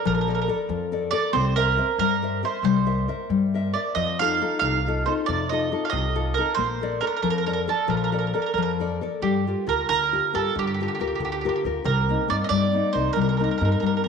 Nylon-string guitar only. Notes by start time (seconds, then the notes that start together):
Already playing: A4 A#4 D5
0.05 F3
0.27 A4 A#4 D5
0.48 A4 A#4 D5
0.69 F3
0.92 A4 A#4 D5
1.12 A4 A#4 D5
1.33 C4
1.57 A#4 C5 E5
1.77 A#4 C5 E5
2.00 G3
2.22 A#4 C5 E5
2.43 A#4 C5 E5
2.64 G3
2.86 A#4 C5 E5
3.08 A#4 C5 E5
3.30 G3
3.54 A#4 C5 E5
3.75 A#4 C5 E5
3.97 F3
4.20 D#4 F4 A4
4.42 D#4 F4 A4
4.63 C3
4.87 D#4 F4 A4
5.07 D#4 F4 A4
5.29 C3
5.52 D#4 F4 A4
5.72 D#4 F4 A4
5.92 C3
6.15 D#4 F4 A4
6.38 D#4 F4 A4
6.58 A#3
6.81 A4 A#4 D5
7.02 A4 A#4 D5
7.24 F3
7.46 A4 A#4 D5
7.68 A4 A#4 D5
7.88 F3
8.12 A4 A#4 D5
8.34 A4 A#4 D5
8.58 F3
8.80 A4 A#4 D5
9.01 A4 A#4 D5
9.23 G3
9.47 F4 G4 A#4
9.67 F4 G4 A#4
9.89 D3
10.12 F4 G4 A#4
10.33 F4 G4 A#4
10.55 D3
10.80 F4 G4 A#4
11.00 F4 G4 A#4
11.20 D3
11.45 F4 G4 A#4
11.65 F4 G4 A#4
11.84 C3
12.09 A#3 C4 D#4
12.28 A#3 C4 D#4
12.51 G3
12.73 A#3 C4 D#4
12.94 A#3 C4 D#4
13.16 G3
13.39 A#3 C4 D#4
13.61 A#3 C4 D#4
13.82 G3